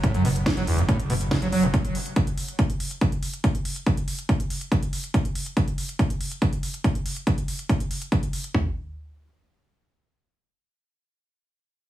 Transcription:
<<
  \new Staff \with { instrumentName = "Acid bass" } { \clef bass \time 4/4 \key fis \minor \tempo 4 = 141 a,16 fis,16 b,16 r8 fis16 e,16 fis,16 a,16 r16 b,16 r16 cis16 fis16 fis16 fis,16 | r1 | r1 | r1 |
r1 | r1 | r1 | }
  \new Staff \with { instrumentName = "Sub bass" } { \clef bass \time 4/4 \key fis \minor r16 fis,,16 fis,,16 fis,,16 r16 fis,,16 fis,,16 fis,,16 r16 fis,,16 fis,,16 fis,,16 r16 fis,,16 fis,,16 fis,,16 | r1 | r1 | r1 |
r1 | r1 | r1 | }
  \new DrumStaff \with { instrumentName = "Drums" } \drummode { \time 4/4 <hh bd>16 hh16 hho16 hh16 <hh bd sn>16 hh16 hho16 hh16 <hh bd>16 hh16 hho16 hh16 <hh bd sn>16 hh16 hho16 hh16 | <hh bd>16 hh16 hho16 hh16 <hh bd>16 hh16 hho16 hh16 <hh bd>16 hh16 hho16 hh16 <hh bd>16 hh16 hho16 hh16 | <hh bd>16 hh16 hho16 hh16 <hh bd>16 hh16 hho16 hh16 <hh bd>16 hh16 hho16 hh16 <hh bd>16 hh16 hho16 hh16 | <hh bd>16 hh16 hho16 hh16 <hh bd>16 hh16 hho16 hh16 <hh bd>16 hh16 hho16 hh16 <hh bd>16 hh16 hho16 hh16 |
<hh bd>16 hh16 hho16 hh16 <hh bd>16 hh16 hho16 hh16 <hh bd>16 hh16 hho16 hh16 <hh bd>16 hh16 hho16 hh16 | <bd tomfh>4 r4 r4 r4 | r4 r4 r4 r4 | }
>>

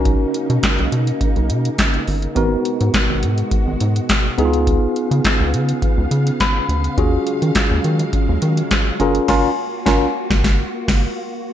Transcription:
<<
  \new Staff \with { instrumentName = "Tine electric piano" } { \time 4/4 \key gis \dorian \tempo 4 = 104 << { r1 | r1 | r2. b''4 | r1 |
r1 | } \\ { <cis' dis' fis' ais'>2.~ <cis' dis' fis' ais'>8 r8 | <b dis' fis' ais'>2.~ <b dis' fis' ais'>8 <b dis' e' eis' gis'>8~ | <b dis' e' eis' gis'>2.~ <b dis' e' eis' gis'>8 r8 | <cis' eis' fis' gis'>2.~ <cis' eis' fis' gis'>8 <cis' eis' gis' ais'>8 |
<cis' eis' ais'>8 r8 <cis' eis' ais'>8 r2 r8 | } >> }
  \new Staff \with { instrumentName = "String machine" } { \time 4/4 \key gis \dorian << { dis'1 | fis'2.~ fis'8 eis''8~ | eis''1~ | eis''2.~ eis''8 fis'8~ |
fis'1 | } \\ { <cis ais>1 | <b, gis>2.~ <b, gis>8 <cis b>8~ | <cis b>1 | <fis gis>2.~ <fis gis>8 <ais eis'>8~ |
<ais eis'>1 | } >> }
  \new Staff \with { instrumentName = "Analog synth bass" } { \clef bass \time 4/4 \key gis \dorian b,,8 r16 b,16 r16 b,,16 b,8 r16 b,,16 b,8 r8 g,,8 | gis,,8 r16 gis,16 r16 gis,,16 gis,8 r16 gis,,16 gis,8 r8 cis,8~ | cis,8 r16 cis16 r16 cis,16 cis8 r16 cis,16 cis8 r8 d,8 | dis,8 r16 dis16 r16 dis,16 dis8 r16 dis,16 dis8 r8 fis,,8 |
fis,,8 r8 fis,,8 r16 fis,,16 fis,,8 r16 fis,,8 r8. | }
  \new DrumStaff \with { instrumentName = "Drums" } \drummode { \time 4/4 <hh bd>8 hh16 hh16 <hc hh bd sn>16 hh16 hh16 hh16 <hh bd>16 hh16 hh16 hh16 <hc hh bd sn>16 hh16 hho16 hh16 | <hh bd>8 hh16 hh16 <hc hh bd sn>8 hh16 hh16 <hh bd>8 hh16 hh16 <hc hh bd sn>8 hh16 hh16 | <hh bd>8 hh16 hh16 <hc hh bd sn>8 hh16 hh16 <hh bd>8 hh16 hh16 <hc hh bd sn>8 hh16 hh16 | <hh bd>8 hh16 hh16 <hc hh bd sn>8 hh16 hh16 <hh bd>8 hh16 hh16 <hc hh bd sn>8 hh16 hh16 |
<cymc bd sn>4 <bd sn>8. <bd sn>16 <bd sn>8. <cymc bd sn>16 r4 | }
>>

